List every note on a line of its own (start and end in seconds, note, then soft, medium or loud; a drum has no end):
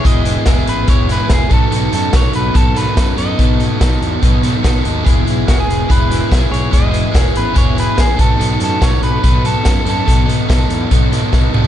0.03 0.35 E1 medium
0.03 0.46 E3 medium
0.03 0.45 G#3 medium
0.03 0.26 B3 medium
0.03 0.24 E4 medium
0.03 0.23 G#4 medium
0.03 0.69 D#5 medium
0.03 kick medium
0.03 closed hi-hat medium
0.25 0.46 B3 medium
0.25 0.46 E4 medium
0.25 0.46 G#4 medium
0.25 closed hi-hat medium
0.46 0.61 E1 medium
0.46 0.87 G#3 medium
0.46 0.88 B3 medium
0.46 0.87 E4 medium
0.46 0.89 G#4 medium
0.46 kick loud
0.46 snare medium
0.46 closed hi-hat medium
0.67 0.83 A1 medium
0.67 0.89 B4 medium
0.67 closed hi-hat medium
0.87 1.18 E1 medium
0.87 1.29 E3 medium
0.87 1.28 G#3 medium
0.87 1.10 B3 medium
0.87 1.08 E4 medium
0.87 1.07 G#4 medium
0.87 1.10 C#5 medium
0.87 kick medium
0.87 closed hi-hat medium
1.09 1.29 B3 medium
1.09 1.30 E4 medium
1.09 1.30 G#4 medium
1.09 1.32 B4 medium
1.09 snare soft
1.09 closed hi-hat medium
1.29 1.45 E1 medium
1.29 1.49 G#3 medium
1.29 1.49 B3 medium
1.29 1.49 E4 medium
1.29 1.49 G#4 medium
1.29 kick loud
1.29 snare loud
1.29 closed hi-hat medium
1.33 1.51 G#4 medium
1.49 1.66 B1 medium
1.49 1.69 B2 medium
1.49 1.70 D#3 medium
1.49 1.70 F#3 medium
1.49 1.71 B3 medium
1.49 1.71 D#4 medium
1.49 1.72 A4 medium
1.49 1.93 A4 medium
1.49 kick medium
1.49 closed hi-hat soft
1.70 1.87 B1 medium
1.70 2.17 B2 medium
1.70 2.13 D#3 medium
1.70 1.93 F#3 medium
1.70 1.92 B3 medium
1.70 1.92 D#4 medium
1.70 1.91 A4 medium
1.70 closed hi-hat medium
1.91 2.07 F#2 medium
1.91 2.11 F#3 medium
1.91 2.12 B3 medium
1.91 2.13 D#4 medium
1.91 2.13 A4 medium
1.91 2.15 A4 medium
1.91 closed hi-hat soft
2.12 2.28 B1 medium
2.12 2.53 F#3 medium
2.12 2.55 B3 medium
2.12 2.55 D#4 medium
2.12 2.54 A4 medium
2.12 kick loud
2.12 snare loud
2.12 closed hi-hat medium
2.16 2.35 C#5 medium
2.33 2.49 B1 medium
2.33 2.56 B4 medium
2.33 closed hi-hat medium
2.54 2.85 B1 medium
2.54 2.96 B2 medium
2.54 2.96 D#3 medium
2.54 2.75 F#3 medium
2.54 2.75 B3 medium
2.54 2.75 D#4 medium
2.54 2.73 A4 medium
2.54 2.77 A4 medium
2.54 kick medium
2.54 closed hi-hat medium
2.74 2.95 F#3 medium
2.74 2.97 B3 medium
2.74 2.97 D#4 medium
2.74 2.96 A4 medium
2.74 3.18 B4 medium
2.74 snare soft
2.74 closed hi-hat medium
2.96 3.12 F#2 medium
2.96 3.17 F#3 medium
2.96 3.18 B3 medium
2.96 3.17 D#4 medium
2.96 3.16 A4 medium
2.96 kick loud
2.96 snare loud
2.96 closed hi-hat medium
3.17 3.33 F#2 medium
3.17 3.38 F#3 medium
3.17 3.39 B3 medium
3.17 3.40 D#4 medium
3.17 3.40 A4 medium
3.17 3.98 D#5 medium
3.17 closed hi-hat medium
3.38 3.69 B1 medium
3.38 3.80 B2 medium
3.38 3.81 D#3 medium
3.38 3.59 F#3 medium
3.38 3.59 B3 medium
3.38 3.59 D#4 medium
3.38 3.57 A4 medium
3.38 kick medium
3.38 closed hi-hat medium
3.59 3.78 F#3 medium
3.59 3.80 B3 medium
3.59 3.80 D#4 medium
3.59 3.80 A4 medium
3.59 closed hi-hat soft
3.79 3.96 B1 medium
3.79 4.21 F#3 medium
3.79 4.23 B3 medium
3.79 4.23 D#4 medium
3.79 4.22 A4 medium
3.79 kick loud
3.79 snare loud
3.79 closed hi-hat medium
4.01 4.16 E2 medium
4.01 closed hi-hat medium
4.21 4.53 B1 medium
4.21 4.64 B2 medium
4.21 4.64 D#3 medium
4.21 4.44 F#3 medium
4.21 4.44 B3 medium
4.21 4.43 D#4 medium
4.21 4.42 A4 medium
4.21 kick medium
4.21 closed hi-hat medium
4.43 4.62 F#3 medium
4.43 4.63 B3 medium
4.43 4.64 D#4 medium
4.43 4.64 A4 medium
4.43 snare soft
4.43 closed hi-hat medium
4.63 4.79 B1 medium
4.63 4.84 F#3 medium
4.63 4.85 B3 medium
4.63 4.84 D#4 medium
4.63 4.82 A4 medium
4.63 kick loud
4.63 snare medium
4.63 closed hi-hat medium
4.83 5.01 D#2 medium
4.83 5.03 F#3 soft
4.83 5.04 B3 medium
4.83 5.05 D#4 medium
4.83 5.04 A4 medium
4.83 closed hi-hat medium
5.03 5.21 E1 medium
5.03 5.88 E3 medium
5.03 5.47 G#3 medium
5.03 5.26 B3 medium
5.03 5.25 E4 medium
5.03 5.24 G#4 medium
5.03 kick medium
5.03 closed hi-hat medium
5.25 5.42 B1 medium
5.25 5.48 B3 soft
5.25 5.48 E4 medium
5.25 5.48 G#4 medium
5.25 closed hi-hat soft
5.47 5.63 E1 medium
5.47 5.88 G#3 medium
5.47 5.89 B3 medium
5.47 5.89 E4 medium
5.47 5.58 F#4 medium
5.47 5.89 G#4 medium
5.47 kick loud
5.47 snare loud
5.47 closed hi-hat medium
5.60 5.91 G#4 medium
5.68 5.83 E1 medium
5.68 closed hi-hat medium
5.88 6.20 E1 medium
5.88 6.31 E3 medium
5.88 6.29 G#3 medium
5.88 6.11 B3 medium
5.88 6.09 E4 medium
5.88 6.08 G#4 medium
5.88 6.51 B4 medium
5.88 kick loud
5.88 closed hi-hat medium
6.09 6.30 B3 medium
6.09 6.30 E4 medium
6.09 6.30 G#4 medium
6.09 snare soft
6.09 closed hi-hat medium
6.30 6.46 B1 medium
6.30 6.70 G#3 medium
6.30 6.53 B3 medium
6.30 6.52 E4 medium
6.30 6.50 G#4 medium
6.30 kick loud
6.30 snare loud
6.30 closed hi-hat medium
6.52 6.67 B1 medium
6.52 6.71 B3 medium
6.52 6.71 E4 medium
6.52 6.71 G#4 medium
6.52 6.73 C#5 medium
6.52 closed hi-hat medium
6.71 7.03 E1 medium
6.71 7.14 E3 medium
6.71 7.10 G#3 medium
6.71 6.92 B3 medium
6.71 6.90 E4 medium
6.71 6.90 G#4 medium
6.71 7.23 D#5 medium
6.71 kick medium
6.71 closed hi-hat medium
6.91 7.12 B3 soft
6.91 7.12 E4 medium
6.91 7.13 G#4 medium
6.91 closed hi-hat medium
7.11 7.30 E1 medium
7.11 7.53 G#3 medium
7.11 7.55 B3 medium
7.11 7.54 E4 medium
7.11 7.54 G#4 medium
7.11 kick loud
7.11 snare loud
7.11 closed hi-hat medium
7.23 7.37 C#5 medium
7.35 7.51 A1 medium
7.35 7.57 B4 medium
7.35 closed hi-hat medium
7.53 7.86 E1 medium
7.53 7.97 E3 medium
7.53 7.95 G#3 medium
7.53 7.78 B3 medium
7.53 7.76 E4 medium
7.53 7.74 G#4 medium
7.53 kick medium
7.53 closed hi-hat medium
7.58 7.79 C#5 medium
7.76 7.97 B3 medium
7.76 7.96 E4 medium
7.76 7.97 G#4 medium
7.76 closed hi-hat medium
7.80 8.00 B4 medium
7.96 8.13 A1 medium
7.96 8.17 G#3 medium
7.96 8.17 B3 medium
7.96 8.17 E4 medium
7.96 8.16 G#4 medium
7.96 8.20 G#4 medium
7.96 kick loud
7.96 snare medium
7.96 closed hi-hat medium
8.17 8.34 B1 medium
8.17 8.37 B2 medium
8.17 8.37 D#3 medium
8.17 8.38 F#3 medium
8.17 8.39 B3 medium
8.17 8.39 D#4 medium
8.17 8.39 A4 medium
8.17 8.59 A4 medium
8.17 kick medium
8.17 closed hi-hat medium
8.38 8.55 B1 medium
8.38 8.84 B2 medium
8.38 8.81 D#3 medium
8.38 8.61 F#3 medium
8.38 8.61 B3 medium
8.38 8.60 D#4 medium
8.38 8.60 A4 medium
8.38 closed hi-hat medium
8.60 8.76 F#2 medium
8.60 8.79 F#3 soft
8.60 8.80 B3 medium
8.60 8.81 D#4 medium
8.60 8.81 A4 medium
8.60 8.84 A4 medium
8.60 closed hi-hat soft
8.80 8.97 B1 medium
8.80 9.23 F#3 medium
8.80 9.22 B3 medium
8.80 9.24 D#4 medium
8.80 9.23 A4 medium
8.80 9.03 C#5 medium
8.80 kick loud
8.80 snare loud
8.80 closed hi-hat medium
9.02 9.17 B1 medium
9.02 9.23 B4 medium
9.02 closed hi-hat soft
9.23 9.54 B1 medium
9.23 9.65 B2 medium
9.23 9.65 D#3 medium
9.23 9.45 F#3 medium
9.23 9.45 B3 medium
9.23 9.44 D#4 medium
9.23 9.43 A4 medium
9.23 9.45 B4 medium
9.23 kick medium
9.23 closed hi-hat medium
9.45 9.63 F#3 medium
9.45 9.64 B3 medium
9.45 9.65 D#4 medium
9.45 9.65 A4 medium
9.45 9.88 A4 medium
9.45 closed hi-hat soft
9.64 9.80 F#2 medium
9.64 9.86 F#3 medium
9.64 9.86 B3 medium
9.64 9.86 D#4 medium
9.64 9.84 A4 medium
9.64 kick loud
9.64 snare loud
9.64 closed hi-hat medium
9.86 10.01 F#2 medium
9.86 10.05 F#3 medium
9.86 10.06 B3 medium
9.86 10.06 D#4 medium
9.86 10.06 A4 medium
9.86 10.67 A4 medium
9.86 closed hi-hat medium
10.06 10.38 B1 medium
10.06 10.48 B2 medium
10.06 10.48 D#3 medium
10.06 10.27 F#3 medium
10.06 10.26 B3 medium
10.06 10.25 D#4 medium
10.06 10.25 A4 medium
10.06 kick medium
10.06 closed hi-hat medium
10.26 10.47 F#3 medium
10.26 10.47 B3 medium
10.26 10.47 D#4 medium
10.26 10.48 A4 medium
10.26 closed hi-hat medium
10.48 10.64 B1 medium
10.48 10.91 F#3 medium
10.48 10.91 B3 medium
10.48 10.91 D#4 medium
10.48 10.92 A4 medium
10.48 kick loud
10.48 snare loud
10.48 closed hi-hat medium
10.69 10.84 E2 medium
10.69 closed hi-hat medium
10.91 11.21 B1 medium
10.91 11.32 B2 medium
10.91 11.33 D#3 medium
10.91 11.12 F#3 medium
10.91 11.11 B3 medium
10.91 11.11 D#4 medium
10.91 11.10 A4 medium
10.91 kick medium
10.91 closed hi-hat medium
11.11 11.31 F#3 medium
11.11 11.31 B3 medium
11.11 11.32 D#4 medium
11.11 11.32 A4 medium
11.11 snare soft
11.11 closed hi-hat medium
11.32 11.48 B1 medium
11.32 11.54 F#3 medium
11.32 11.53 B3 medium
11.32 11.52 D#4 medium
11.32 11.52 A4 medium
11.32 kick medium
11.32 snare medium
11.52 11.67 C2 medium
11.52 11.67 F#3 medium
11.52 11.67 B3 medium
11.52 11.67 D#4 medium
11.52 11.67 A4 medium
11.52 mid tom medium